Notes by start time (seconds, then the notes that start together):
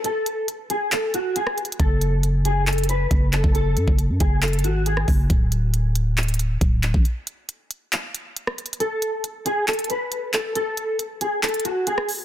0.04 A4, closed hi-hat
0.26 closed hi-hat
0.48 closed hi-hat
0.70 G#4, closed hi-hat
0.92 A4, clap, closed hi-hat
1.14 F#4, closed hi-hat
1.36 G#4, closed hi-hat
1.47 cross-stick
1.58 closed hi-hat, open hi-hat
1.65 closed hi-hat
1.72 closed hi-hat
1.80 F#1 A4, kick, closed hi-hat
2.01 closed hi-hat
2.23 closed hi-hat
2.45 G#4, closed hi-hat
2.67 A4, clap, closed hi-hat
2.73 closed hi-hat
2.78 closed hi-hat
2.84 closed hi-hat
2.89 B4, closed hi-hat
3.11 F#1, kick, closed hi-hat
3.33 A4, clap, closed hi-hat
3.44 F#1, kick
3.55 A4, closed hi-hat
3.77 F#2, closed hi-hat
3.88 F#1, kick
3.99 closed hi-hat
4.09 F#2
4.20 F#1 G#4, kick, closed hi-hat
4.42 A4, clap, closed hi-hat
4.48 closed hi-hat
4.53 closed hi-hat
4.59 closed hi-hat
4.64 G#1 F#4, closed hi-hat
4.86 G#4, closed hi-hat
4.97 cross-stick
5.08 F#1, kick, open hi-hat
5.30 D1, kick, closed hi-hat
5.52 closed hi-hat
5.74 closed hi-hat
5.95 closed hi-hat
6.18 clap, closed hi-hat
6.23 closed hi-hat
6.28 closed hi-hat
6.34 closed hi-hat
6.39 closed hi-hat
6.61 D1, kick, closed hi-hat
6.83 clap, closed hi-hat
6.94 A1, kick
7.05 closed hi-hat
7.27 closed hi-hat
7.49 closed hi-hat
7.71 closed hi-hat
7.93 clap, closed hi-hat
8.15 closed hi-hat
8.37 closed hi-hat
8.47 cross-stick
8.58 closed hi-hat, open hi-hat
8.66 closed hi-hat
8.73 closed hi-hat
8.80 A4, closed hi-hat
9.02 closed hi-hat
9.24 closed hi-hat
9.46 G#4, closed hi-hat
9.68 A4, clap, closed hi-hat
9.73 closed hi-hat
9.79 closed hi-hat
9.84 closed hi-hat
9.90 B4, closed hi-hat
10.12 closed hi-hat
10.33 A4, clap, closed hi-hat
10.55 A4, closed hi-hat
10.77 closed hi-hat
10.99 closed hi-hat
11.21 G#4, closed hi-hat
11.43 A4, clap, closed hi-hat
11.49 closed hi-hat
11.54 closed hi-hat
11.60 closed hi-hat
11.65 F#4, closed hi-hat
11.87 G#4, closed hi-hat
11.98 cross-stick
12.09 open hi-hat